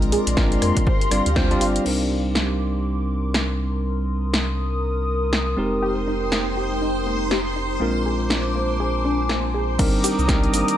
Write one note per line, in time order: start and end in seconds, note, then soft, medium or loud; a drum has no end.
0.00 0.18 A#1 medium
0.00 0.29 G#3 medium
0.00 0.34 G#3 medium
0.00 0.83 G#3 medium
0.00 0.34 C4 medium
0.00 0.35 D4 medium
0.00 0.35 F4 medium
0.00 0.35 A#4 medium
0.00 1.87 A#4 medium
0.00 0.86 D5 medium
0.00 0.29 A#5 medium
0.00 1.87 A#5 medium
0.00 1.84 C6 loud
0.00 closed hi-hat soft
0.12 0.20 G#4 loud
0.12 open hi-hat loud
0.27 0.57 A#1 loud
0.27 1.28 A#4 medium
0.27 closed hi-hat medium
0.33 0.85 G#3 loud
0.33 0.85 C4 medium
0.33 0.45 D4 medium
0.33 0.85 D4 medium
0.33 6.49 C6 medium
0.33 kick loud
0.33 snare loud
0.37 0.86 F4 medium
0.37 0.86 A#4 loud
0.52 closed hi-hat medium
0.62 0.72 F2 medium
0.62 0.70 A#3 medium
0.62 cross-stick medium
0.62 open hi-hat loud
0.77 kick medium
0.77 closed hi-hat medium
0.87 1.85 G4 medium
0.87 0.94 C5 loud
0.87 1.85 F5 medium
0.87 kick loud
1.01 closed hi-hat medium
1.11 1.21 G1 medium
1.11 1.27 G3 medium
1.11 1.27 C4 medium
1.11 1.27 D4 medium
1.11 1.19 F4 medium
1.11 1.27 F4 medium
1.11 1.27 D5 medium
1.11 cross-stick medium
1.11 open hi-hat loud
1.26 1.56 D2 medium
1.26 closed hi-hat medium
1.32 1.48 G3 loud
1.32 1.49 C4 medium
1.32 1.49 D4 medium
1.32 3.05 G4 medium
1.32 1.44 C5 loud
1.32 3.31 F5 medium
1.32 snare loud
1.36 1.49 F4 medium
1.36 1.49 C5 loud
1.36 kick loud
1.50 1.84 G3 medium
1.50 1.84 C4 medium
1.50 1.85 D4 medium
1.50 1.85 F4 medium
1.50 1.85 D5 loud
1.50 closed hi-hat soft
1.61 1.79 G1 medium
1.61 1.64 F4 loud
1.61 open hi-hat loud
1.76 closed hi-hat medium
1.85 5.56 C2 medium
1.85 5.55 G3 medium
1.85 5.55 C4 medium
1.85 5.55 D4 medium
1.85 5.56 D#4 medium
1.85 7.77 A#4 medium
1.85 5.56 A#4 medium
1.85 3.82 D6 medium
1.85 crash medium
2.35 6.49 A#4 medium
2.35 snare loud
3.34 snare loud
3.84 7.77 D#6 medium
4.34 snare loud
5.33 snare loud
5.57 7.79 F1 medium
5.57 7.78 G#3 medium
5.57 7.78 C4 medium
5.57 7.78 D#4 medium
5.57 7.81 D#4 loud
5.57 7.79 G4 medium
5.57 7.79 A#4 medium
5.57 7.79 G5 medium
5.82 5.90 G4 loud
5.82 9.80 C5 medium
5.82 9.80 C6 medium
5.93 8.46 G#3 medium
6.07 6.15 D#4 medium
6.32 6.40 A#3 medium
6.32 snare loud
6.57 6.65 G4 loud
6.57 10.77 A#5 medium
6.82 6.90 D#4 medium
7.07 7.14 A#3 medium
7.31 7.39 G4 loud
7.31 snare loud
7.56 7.64 D#4 medium
7.80 9.77 A#1 medium
7.80 9.76 G#3 medium
7.80 7.89 A#3 medium
7.80 9.77 C4 medium
7.80 9.77 D4 medium
7.80 9.79 D4 medium
7.80 9.77 F4 medium
7.80 9.77 A#4 medium
7.80 9.77 C5 medium
7.80 9.77 D6 medium
8.01 10.77 C5 medium
8.06 8.14 G#4 loud
8.30 8.38 D4 medium
8.30 snare loud
8.55 8.63 A#3 medium
8.64 9.79 G#5 medium
8.80 8.88 G#4 loud
9.05 9.13 D4 medium
9.29 9.37 A#3 medium
9.29 snare loud
9.54 9.62 G#4 loud
9.79 9.89 C2 loud
9.79 10.77 D#3 medium
9.79 10.25 G3 loud
9.79 9.87 A#3 medium
9.79 10.25 C4 loud
9.79 10.25 D4 loud
9.79 10.25 D#4 loud
9.79 10.25 A#4 loud
9.79 10.77 A#5 medium
9.79 10.77 D6 medium
9.79 10.77 D#6 loud
9.79 kick loud
9.79 closed hi-hat medium
9.79 crash loud
9.79 shaker soft
10.04 10.12 G4 loud
10.04 open hi-hat loud
10.04 shaker medium
10.19 10.48 C2 loud
10.19 shaker soft
10.28 10.77 G3 loud
10.28 10.77 C4 medium
10.28 10.37 D4 medium
10.28 10.77 D4 medium
10.28 10.77 D#4 medium
10.28 10.77 A#4 loud
10.28 kick loud
10.28 snare loud
10.28 closed hi-hat medium
10.28 shaker soft
10.44 closed hi-hat soft
10.54 10.64 G1 medium
10.54 10.61 A#3 medium
10.54 open hi-hat loud
10.54 shaker medium
10.68 closed hi-hat medium
10.68 shaker soft